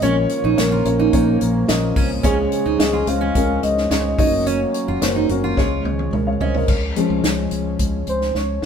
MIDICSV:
0, 0, Header, 1, 7, 480
1, 0, Start_track
1, 0, Key_signature, -5, "major"
1, 0, Tempo, 555453
1, 15, Time_signature, 4, 2, 24, 8
1, 7478, End_track
2, 0, Start_track
2, 0, Title_t, "Soft synth lead"
2, 0, Program_c, 0, 80
2, 27, Note_on_c, 0, 73, 95
2, 513, Note_on_c, 0, 70, 84
2, 526, Note_off_c, 0, 73, 0
2, 1224, Note_off_c, 0, 70, 0
2, 1954, Note_on_c, 0, 68, 90
2, 2168, Note_off_c, 0, 68, 0
2, 2183, Note_on_c, 0, 68, 94
2, 2660, Note_on_c, 0, 77, 113
2, 2673, Note_off_c, 0, 68, 0
2, 3139, Note_on_c, 0, 75, 103
2, 3152, Note_off_c, 0, 77, 0
2, 3617, Note_off_c, 0, 75, 0
2, 3620, Note_on_c, 0, 75, 104
2, 3861, Note_on_c, 0, 73, 91
2, 3874, Note_off_c, 0, 75, 0
2, 4818, Note_off_c, 0, 73, 0
2, 6991, Note_on_c, 0, 72, 96
2, 7231, Note_on_c, 0, 73, 94
2, 7244, Note_off_c, 0, 72, 0
2, 7463, Note_off_c, 0, 73, 0
2, 7478, End_track
3, 0, Start_track
3, 0, Title_t, "Upright piano"
3, 0, Program_c, 1, 0
3, 0, Control_c, 1, 64, 127
3, 19, Note_on_c, 1, 46, 61
3, 19, Note_on_c, 1, 58, 87
3, 22, Note_on_c, 1, 61, 84
3, 22, Note_on_c, 1, 65, 78
3, 22, Note_on_c, 1, 73, 96
3, 25, Control_c, 1, 64, 0
3, 162, Control_c, 1, 64, 127
3, 440, Note_off_c, 1, 58, 0
3, 441, Note_off_c, 1, 61, 0
3, 441, Note_off_c, 1, 65, 0
3, 441, Note_off_c, 1, 73, 0
3, 496, Note_on_c, 1, 58, 72
3, 498, Note_on_c, 1, 61, 62
3, 498, Note_on_c, 1, 65, 65
3, 499, Note_on_c, 1, 73, 80
3, 702, Note_off_c, 1, 46, 0
3, 707, Note_off_c, 1, 58, 0
3, 708, Note_off_c, 1, 61, 0
3, 708, Note_off_c, 1, 65, 0
3, 708, Note_off_c, 1, 73, 0
3, 741, Note_on_c, 1, 58, 66
3, 742, Note_on_c, 1, 61, 58
3, 742, Note_on_c, 1, 65, 57
3, 742, Note_on_c, 1, 73, 69
3, 949, Note_off_c, 1, 58, 0
3, 950, Note_off_c, 1, 61, 0
3, 950, Note_off_c, 1, 65, 0
3, 950, Note_off_c, 1, 73, 0
3, 977, Note_on_c, 1, 61, 65
3, 977, Note_on_c, 1, 65, 67
3, 978, Note_on_c, 1, 58, 69
3, 979, Note_on_c, 1, 73, 78
3, 1399, Note_off_c, 1, 58, 0
3, 1399, Note_off_c, 1, 61, 0
3, 1399, Note_off_c, 1, 65, 0
3, 1400, Note_off_c, 1, 73, 0
3, 1457, Note_on_c, 1, 75, 90
3, 1458, Note_on_c, 1, 58, 81
3, 1458, Note_on_c, 1, 61, 70
3, 1459, Note_on_c, 1, 65, 70
3, 1879, Note_off_c, 1, 75, 0
3, 1880, Note_off_c, 1, 58, 0
3, 1880, Note_off_c, 1, 61, 0
3, 1880, Note_off_c, 1, 65, 0
3, 1940, Note_on_c, 1, 73, 95
3, 1941, Note_on_c, 1, 56, 92
3, 1942, Note_on_c, 1, 49, 62
3, 1942, Note_on_c, 1, 61, 79
3, 1942, Note_on_c, 1, 65, 83
3, 1944, Control_c, 1, 64, 0
3, 2071, Control_c, 1, 64, 127
3, 2361, Note_off_c, 1, 56, 0
3, 2361, Note_off_c, 1, 65, 0
3, 2361, Note_off_c, 1, 73, 0
3, 2362, Note_off_c, 1, 61, 0
3, 2419, Note_on_c, 1, 56, 68
3, 2419, Note_on_c, 1, 61, 66
3, 2420, Note_on_c, 1, 65, 64
3, 2420, Note_on_c, 1, 75, 82
3, 2624, Note_off_c, 1, 49, 0
3, 2628, Note_off_c, 1, 56, 0
3, 2628, Note_off_c, 1, 61, 0
3, 2629, Note_off_c, 1, 65, 0
3, 2629, Note_off_c, 1, 75, 0
3, 2659, Note_on_c, 1, 61, 59
3, 2660, Note_on_c, 1, 65, 57
3, 2661, Note_on_c, 1, 56, 62
3, 2661, Note_on_c, 1, 72, 75
3, 2869, Note_off_c, 1, 56, 0
3, 2869, Note_off_c, 1, 61, 0
3, 2869, Note_off_c, 1, 65, 0
3, 2869, Note_off_c, 1, 72, 0
3, 2899, Note_on_c, 1, 61, 63
3, 2899, Note_on_c, 1, 65, 64
3, 2900, Note_on_c, 1, 70, 74
3, 2901, Note_on_c, 1, 56, 66
3, 3320, Note_off_c, 1, 61, 0
3, 3320, Note_off_c, 1, 65, 0
3, 3320, Note_off_c, 1, 70, 0
3, 3321, Note_off_c, 1, 56, 0
3, 3378, Note_on_c, 1, 61, 60
3, 3378, Note_on_c, 1, 73, 77
3, 3379, Note_on_c, 1, 65, 58
3, 3380, Note_on_c, 1, 56, 66
3, 3608, Note_off_c, 1, 61, 0
3, 3608, Note_off_c, 1, 73, 0
3, 3617, Note_off_c, 1, 56, 0
3, 3617, Note_off_c, 1, 65, 0
3, 3621, Note_on_c, 1, 57, 56
3, 3621, Note_on_c, 1, 61, 60
3, 3621, Note_on_c, 1, 73, 75
3, 3622, Note_on_c, 1, 66, 60
3, 3627, Control_c, 1, 64, 0
3, 3674, Note_off_c, 1, 57, 0
3, 3679, Note_on_c, 1, 58, 67
3, 3782, Control_c, 1, 64, 127
3, 4253, Note_off_c, 1, 61, 0
3, 4253, Note_off_c, 1, 66, 0
3, 4253, Note_off_c, 1, 73, 0
3, 4282, Note_off_c, 1, 58, 0
3, 4341, Note_on_c, 1, 61, 62
3, 4341, Note_on_c, 1, 66, 62
3, 4343, Note_on_c, 1, 58, 70
3, 4344, Note_on_c, 1, 72, 79
3, 4549, Note_off_c, 1, 61, 0
3, 4549, Note_off_c, 1, 66, 0
3, 4550, Note_off_c, 1, 58, 0
3, 4551, Note_off_c, 1, 72, 0
3, 4583, Note_on_c, 1, 58, 74
3, 4583, Note_on_c, 1, 66, 70
3, 4584, Note_on_c, 1, 70, 83
3, 4585, Note_on_c, 1, 61, 68
3, 4790, Note_off_c, 1, 58, 0
3, 4791, Note_off_c, 1, 61, 0
3, 4791, Note_off_c, 1, 66, 0
3, 4791, Note_off_c, 1, 70, 0
3, 4822, Note_on_c, 1, 56, 81
3, 4822, Note_on_c, 1, 61, 73
3, 4822, Note_on_c, 1, 73, 86
3, 4823, Note_on_c, 1, 49, 70
3, 4823, Note_on_c, 1, 65, 72
3, 4825, Control_c, 1, 64, 0
3, 4994, Control_c, 1, 64, 127
3, 5241, Note_off_c, 1, 73, 0
3, 5242, Note_off_c, 1, 56, 0
3, 5242, Note_off_c, 1, 61, 0
3, 5242, Note_off_c, 1, 65, 0
3, 5300, Note_on_c, 1, 73, 57
3, 5304, Note_on_c, 1, 70, 50
3, 5411, Note_off_c, 1, 73, 0
3, 5413, Note_off_c, 1, 70, 0
3, 5417, Note_on_c, 1, 77, 63
3, 5424, Note_on_c, 1, 73, 54
3, 5504, Note_off_c, 1, 49, 0
3, 5530, Note_off_c, 1, 77, 0
3, 5534, Note_off_c, 1, 73, 0
3, 5542, Note_on_c, 1, 75, 62
3, 5546, Note_on_c, 1, 72, 51
3, 5652, Note_off_c, 1, 75, 0
3, 5654, Note_off_c, 1, 72, 0
3, 5662, Note_on_c, 1, 73, 58
3, 5668, Note_on_c, 1, 70, 51
3, 5786, Control_c, 1, 64, 0
3, 5886, Note_off_c, 1, 73, 0
3, 5890, Note_off_c, 1, 70, 0
3, 5938, Control_c, 1, 64, 127
3, 6018, Note_on_c, 1, 53, 48
3, 6022, Note_on_c, 1, 56, 46
3, 6027, Note_on_c, 1, 61, 55
3, 6335, Note_off_c, 1, 53, 0
3, 6338, Note_off_c, 1, 56, 0
3, 6340, Note_off_c, 1, 61, 0
3, 7478, End_track
4, 0, Start_track
4, 0, Title_t, "Steel-string acoustic guitar"
4, 0, Program_c, 2, 25
4, 23, Note_on_c, 2, 61, 86
4, 133, Note_off_c, 2, 61, 0
4, 384, Note_on_c, 2, 63, 71
4, 494, Note_off_c, 2, 63, 0
4, 622, Note_on_c, 2, 65, 75
4, 732, Note_off_c, 2, 65, 0
4, 859, Note_on_c, 2, 63, 72
4, 1195, Note_off_c, 2, 63, 0
4, 1696, Note_on_c, 2, 61, 77
4, 1809, Note_off_c, 2, 61, 0
4, 1929, Note_on_c, 2, 61, 87
4, 2046, Note_off_c, 2, 61, 0
4, 2294, Note_on_c, 2, 63, 68
4, 2408, Note_off_c, 2, 63, 0
4, 2533, Note_on_c, 2, 65, 65
4, 2648, Note_off_c, 2, 65, 0
4, 2772, Note_on_c, 2, 61, 69
4, 3112, Note_off_c, 2, 61, 0
4, 3615, Note_on_c, 2, 63, 66
4, 3729, Note_off_c, 2, 63, 0
4, 3857, Note_on_c, 2, 61, 82
4, 3970, Note_off_c, 2, 61, 0
4, 4218, Note_on_c, 2, 65, 68
4, 4330, Note_off_c, 2, 65, 0
4, 4457, Note_on_c, 2, 63, 68
4, 4570, Note_off_c, 2, 63, 0
4, 4699, Note_on_c, 2, 65, 76
4, 5035, Note_off_c, 2, 65, 0
4, 5540, Note_on_c, 2, 61, 70
4, 5651, Note_off_c, 2, 61, 0
4, 7478, End_track
5, 0, Start_track
5, 0, Title_t, "Analog synth pad"
5, 0, Program_c, 3, 89
5, 20, Note_on_c, 3, 53, 80
5, 20, Note_on_c, 3, 61, 91
5, 25, Note_on_c, 3, 58, 74
5, 1918, Note_off_c, 3, 61, 0
5, 1921, Note_off_c, 3, 58, 0
5, 1939, Note_on_c, 3, 61, 91
5, 1943, Note_on_c, 3, 56, 75
5, 3583, Note_off_c, 3, 53, 0
5, 3602, Note_off_c, 3, 56, 0
5, 3623, Note_on_c, 3, 54, 73
5, 3624, Note_on_c, 3, 58, 67
5, 4807, Note_off_c, 3, 54, 0
5, 4807, Note_off_c, 3, 58, 0
5, 4820, Note_on_c, 3, 53, 71
5, 4822, Note_on_c, 3, 56, 67
5, 5742, Note_off_c, 3, 61, 0
5, 5765, Note_off_c, 3, 53, 0
5, 5769, Note_off_c, 3, 56, 0
5, 5775, Note_on_c, 3, 53, 74
5, 5776, Note_on_c, 3, 61, 81
5, 5779, Note_on_c, 3, 56, 72
5, 7478, Note_off_c, 3, 53, 0
5, 7478, Note_off_c, 3, 56, 0
5, 7478, Note_off_c, 3, 61, 0
5, 7478, End_track
6, 0, Start_track
6, 0, Title_t, "Fingered electric bass"
6, 0, Program_c, 4, 33
6, 20, Note_on_c, 4, 34, 96
6, 215, Note_off_c, 4, 34, 0
6, 379, Note_on_c, 4, 34, 89
6, 475, Note_off_c, 4, 34, 0
6, 502, Note_on_c, 4, 34, 84
6, 696, Note_off_c, 4, 34, 0
6, 740, Note_on_c, 4, 34, 90
6, 935, Note_off_c, 4, 34, 0
6, 980, Note_on_c, 4, 34, 96
6, 1174, Note_off_c, 4, 34, 0
6, 1224, Note_on_c, 4, 34, 91
6, 1417, Note_off_c, 4, 34, 0
6, 1462, Note_on_c, 4, 34, 90
6, 1656, Note_off_c, 4, 34, 0
6, 1697, Note_on_c, 4, 36, 83
6, 1893, Note_off_c, 4, 36, 0
6, 1934, Note_on_c, 4, 37, 97
6, 2131, Note_off_c, 4, 37, 0
6, 2299, Note_on_c, 4, 37, 87
6, 2396, Note_off_c, 4, 37, 0
6, 2417, Note_on_c, 4, 37, 94
6, 2613, Note_off_c, 4, 37, 0
6, 2655, Note_on_c, 4, 37, 88
6, 2852, Note_off_c, 4, 37, 0
6, 2897, Note_on_c, 4, 37, 102
6, 3093, Note_off_c, 4, 37, 0
6, 3142, Note_on_c, 4, 37, 88
6, 3336, Note_off_c, 4, 37, 0
6, 3377, Note_on_c, 4, 37, 95
6, 3573, Note_off_c, 4, 37, 0
6, 3616, Note_on_c, 4, 30, 92
6, 4009, Note_off_c, 4, 30, 0
6, 4221, Note_on_c, 4, 30, 92
6, 4317, Note_off_c, 4, 30, 0
6, 4340, Note_on_c, 4, 30, 80
6, 4534, Note_off_c, 4, 30, 0
6, 4575, Note_on_c, 4, 30, 84
6, 4772, Note_off_c, 4, 30, 0
6, 4817, Note_on_c, 4, 37, 94
6, 5013, Note_off_c, 4, 37, 0
6, 5055, Note_on_c, 4, 37, 80
6, 5252, Note_off_c, 4, 37, 0
6, 5294, Note_on_c, 4, 37, 83
6, 5491, Note_off_c, 4, 37, 0
6, 5536, Note_on_c, 4, 36, 79
6, 5732, Note_off_c, 4, 36, 0
6, 5775, Note_on_c, 4, 37, 85
6, 5972, Note_off_c, 4, 37, 0
6, 6136, Note_on_c, 4, 37, 89
6, 6234, Note_off_c, 4, 37, 0
6, 6252, Note_on_c, 4, 37, 76
6, 6450, Note_off_c, 4, 37, 0
6, 6496, Note_on_c, 4, 37, 80
6, 6692, Note_off_c, 4, 37, 0
6, 6736, Note_on_c, 4, 37, 90
6, 6932, Note_off_c, 4, 37, 0
6, 6978, Note_on_c, 4, 37, 80
6, 7173, Note_off_c, 4, 37, 0
6, 7215, Note_on_c, 4, 37, 81
6, 7412, Note_off_c, 4, 37, 0
6, 7478, End_track
7, 0, Start_track
7, 0, Title_t, "Drums"
7, 16, Note_on_c, 9, 42, 79
7, 102, Note_off_c, 9, 42, 0
7, 253, Note_on_c, 9, 42, 65
7, 340, Note_off_c, 9, 42, 0
7, 500, Note_on_c, 9, 38, 95
7, 501, Note_on_c, 9, 42, 82
7, 587, Note_off_c, 9, 38, 0
7, 587, Note_off_c, 9, 42, 0
7, 737, Note_on_c, 9, 42, 63
7, 823, Note_off_c, 9, 42, 0
7, 977, Note_on_c, 9, 42, 81
7, 978, Note_on_c, 9, 36, 81
7, 1063, Note_off_c, 9, 42, 0
7, 1065, Note_off_c, 9, 36, 0
7, 1217, Note_on_c, 9, 42, 70
7, 1303, Note_off_c, 9, 42, 0
7, 1455, Note_on_c, 9, 38, 96
7, 1458, Note_on_c, 9, 42, 80
7, 1541, Note_off_c, 9, 38, 0
7, 1544, Note_off_c, 9, 42, 0
7, 1694, Note_on_c, 9, 46, 76
7, 1696, Note_on_c, 9, 36, 92
7, 1780, Note_off_c, 9, 46, 0
7, 1782, Note_off_c, 9, 36, 0
7, 1935, Note_on_c, 9, 42, 78
7, 1936, Note_on_c, 9, 36, 99
7, 2022, Note_off_c, 9, 36, 0
7, 2022, Note_off_c, 9, 42, 0
7, 2175, Note_on_c, 9, 42, 67
7, 2262, Note_off_c, 9, 42, 0
7, 2416, Note_on_c, 9, 38, 97
7, 2417, Note_on_c, 9, 42, 85
7, 2502, Note_off_c, 9, 38, 0
7, 2503, Note_off_c, 9, 42, 0
7, 2653, Note_on_c, 9, 42, 63
7, 2740, Note_off_c, 9, 42, 0
7, 2896, Note_on_c, 9, 42, 79
7, 2897, Note_on_c, 9, 36, 76
7, 2982, Note_off_c, 9, 42, 0
7, 2983, Note_off_c, 9, 36, 0
7, 3136, Note_on_c, 9, 42, 72
7, 3223, Note_off_c, 9, 42, 0
7, 3260, Note_on_c, 9, 38, 32
7, 3346, Note_off_c, 9, 38, 0
7, 3376, Note_on_c, 9, 38, 100
7, 3379, Note_on_c, 9, 42, 86
7, 3463, Note_off_c, 9, 38, 0
7, 3465, Note_off_c, 9, 42, 0
7, 3617, Note_on_c, 9, 36, 98
7, 3619, Note_on_c, 9, 46, 77
7, 3703, Note_off_c, 9, 36, 0
7, 3705, Note_off_c, 9, 46, 0
7, 3859, Note_on_c, 9, 42, 80
7, 3946, Note_off_c, 9, 42, 0
7, 4097, Note_on_c, 9, 42, 66
7, 4183, Note_off_c, 9, 42, 0
7, 4335, Note_on_c, 9, 38, 93
7, 4336, Note_on_c, 9, 42, 85
7, 4422, Note_off_c, 9, 38, 0
7, 4423, Note_off_c, 9, 42, 0
7, 4573, Note_on_c, 9, 42, 62
7, 4659, Note_off_c, 9, 42, 0
7, 4816, Note_on_c, 9, 36, 73
7, 4818, Note_on_c, 9, 38, 53
7, 4903, Note_off_c, 9, 36, 0
7, 4904, Note_off_c, 9, 38, 0
7, 5057, Note_on_c, 9, 48, 66
7, 5143, Note_off_c, 9, 48, 0
7, 5177, Note_on_c, 9, 48, 63
7, 5263, Note_off_c, 9, 48, 0
7, 5298, Note_on_c, 9, 47, 76
7, 5384, Note_off_c, 9, 47, 0
7, 5535, Note_on_c, 9, 43, 91
7, 5622, Note_off_c, 9, 43, 0
7, 5655, Note_on_c, 9, 43, 86
7, 5741, Note_off_c, 9, 43, 0
7, 5773, Note_on_c, 9, 49, 74
7, 5775, Note_on_c, 9, 36, 97
7, 5859, Note_off_c, 9, 49, 0
7, 5862, Note_off_c, 9, 36, 0
7, 6015, Note_on_c, 9, 42, 62
7, 6101, Note_off_c, 9, 42, 0
7, 6255, Note_on_c, 9, 38, 89
7, 6255, Note_on_c, 9, 42, 77
7, 6341, Note_off_c, 9, 38, 0
7, 6342, Note_off_c, 9, 42, 0
7, 6489, Note_on_c, 9, 42, 58
7, 6576, Note_off_c, 9, 42, 0
7, 6732, Note_on_c, 9, 42, 77
7, 6735, Note_on_c, 9, 36, 73
7, 6819, Note_off_c, 9, 42, 0
7, 6821, Note_off_c, 9, 36, 0
7, 6971, Note_on_c, 9, 42, 61
7, 7058, Note_off_c, 9, 42, 0
7, 7095, Note_on_c, 9, 38, 28
7, 7181, Note_off_c, 9, 38, 0
7, 7213, Note_on_c, 9, 38, 44
7, 7300, Note_off_c, 9, 38, 0
7, 7478, End_track
0, 0, End_of_file